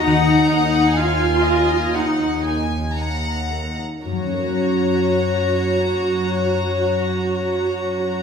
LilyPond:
<<
  \new Staff \with { instrumentName = "Violin section" } { \time 4/4 \key fis \major \tempo 4 = 57 << { ais''4 gis''4 fis''8 gis''8 ais''8. r16 | ais''1 | } \\ { fis''8 fis''8 eis''8 dis''8 fis''4 fis''8. r16 | cis''1 | } >> }
  \new Staff \with { instrumentName = "Viola section" } { \time 4/4 \key fis \major dis'4 eis'4 dis'8 r4. | fis'1 | }
  \new Staff \with { instrumentName = "Harp" } { \time 4/4 \key fis \major <dis ais dis' ais' dis'' ais''>16 ais16 ais'16 dis'16 dis''16 ais''16 ais'16 dis'16 ais16 dis'16 ais'16 dis'16 dis''16 ais''16 ais'16 dis'16 | <fis, fis ais cis' ais' cis''>1 | }
  \new Staff \with { instrumentName = "Cello section" } { \clef bass \time 4/4 \key fis \major dis,2.~ dis,8. r16 | fis,1 | }
>>